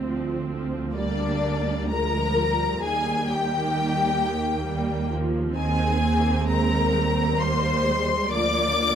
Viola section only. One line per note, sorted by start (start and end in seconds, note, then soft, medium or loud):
0.00 0.91 C4 soft
0.04 0.49 F3 soft
0.50 0.94 F3 soft
0.96 1.91 G3 soft
0.96 1.91 A#3 soft
1.91 2.83 F3 soft
1.91 2.38 G#3 soft
2.39 3.73 G3 soft
2.84 4.66 D#3 soft
3.75 4.19 G3 soft
4.21 5.56 A#3 soft
4.66 5.10 G3 soft
5.12 5.55 F3 soft
5.56 6.01 D#3 soft
5.56 7.36 C4 soft
6.02 6.47 A#3 soft
6.48 6.94 G#3 soft
6.94 8.33 G3 soft
7.40 7.86 A#3 medium
7.87 8.33 G#3 medium
8.33 8.78 F3 soft
8.33 8.95 A#3 soft
8.79 8.95 F3 soft